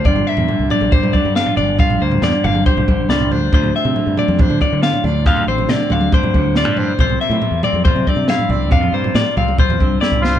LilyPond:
<<
  \new Staff \with { instrumentName = "Clean electric guitar" } { \time 4/4 \key d \minor \tempo 4 = 139 d''8 e''4 d''8 c''8 d''8 f''8 d''8 | f''8 c''8 d''8 f''8 c''4 d''8 c''8 | c''8 e''4 d''8 c''8 d''8 f''8 d''8 | f''8 c''8 d''8 f''8 c''4 d''8 c''8 |
c''8 e''4 d''8 c''8 d''8 f''8 d''8 | f''8 c''8 d''8 f''8 c''4 d''8 c''8 | }
  \new Staff \with { instrumentName = "Trumpet" } { \time 4/4 \key d \minor r1 | r1 | r1 | r1 |
r1 | r2. r8 f'8 | }
  \new Staff \with { instrumentName = "Clean electric guitar" } { \time 4/4 \key d \minor << { f'8 bes4 d'8 g'8 d'8 d'16 f'16 d'8 | f'8 bes4 d'8 g'8 d'8 f'8 d'8 | f'8 c'4 d'8 d'8 d'8 f'8 d'8 | f'8 c'4 d'8 d'8 d'8 f'8 d'8 |
f'8 bes4 c'8 f'8 c'8 e'8 c'8 | d'16 f'16 bes4 c'8 f'8 c'8 e'8 c'8 | } \\ { <g, d>4 d4. d4. | g,4 d4. d4. | d,4 d4. a,4. | d,4 d4. a,4. |
c4 f4. g,4. | c4 f4. g,4. | } >> }
  \new Staff \with { instrumentName = "Fingered electric bass" } { \clef bass \time 4/4 \key d \minor g,,8 r16 e,16 r16 c,16 r16 bes,,8 g,16 r16 g,8 r16 g,,8 | bes,,8 d,8 e,16 r16 g,,8 r16 c,16 bes,,8 c,8 d,8 | d,8 r16 c16 r16 g,16 r16 f,8 d16 r16 d8 r16 d,8 | f,8 a,,8 c16 r16 d,8 r16 g,16 d,8. g,8. |
c,8 r16 a,16 r16 e,16 r16 f,8 c16 r16 c8 r16 c,8 | f,8 g,8 a,16 r16 c,8 r16 e,16 c,8 r16 c,8. | }
  \new DrumStaff \with { instrumentName = "Drums" } \drummode { \time 4/4 <bd tomfh>16 tomfh8 tomfh16 tomfh8 <tomfh toml>16 toml16 <bd tomfh toml>16 tomfh16 <bd toml>8 sn16 tomfh16 tomfh8 | <bd tomfh>16 tomfh8 tomfh16 <sn tomfh>8 <tomfh toml>16 toml16 <bd tomfh toml>16 tomfh16 <bd toml>8 sn16 tomfh16 tomfh8 | <bd tomfh>16 tomfh8 tomfh16 tomfh8 <tomfh toml>16 toml16 <bd tomfh toml>16 tomfh16 <bd toml>8 sn16 tomfh16 tomfh8 | <bd tomfh>16 tomfh8 tomfh16 <sn tomfh>8 <tomfh toml>16 toml16 <bd tomfh toml>16 tomfh16 <bd toml>8 sn16 tomfh16 tomfh8 |
<bd tomfh>16 tomfh8 tomfh16 tomfh8 <tomfh toml>16 toml16 <bd tomfh toml>16 tomfh16 <bd toml>8 sn16 tomfh16 tomfh8 | <bd tomfh>16 tomfh8 tomfh16 <sn tomfh>8 <tomfh toml>16 toml16 <bd tomfh toml>16 tomfh16 <bd toml>8 sn16 tomfh16 sn16 tomfh16 | }
>>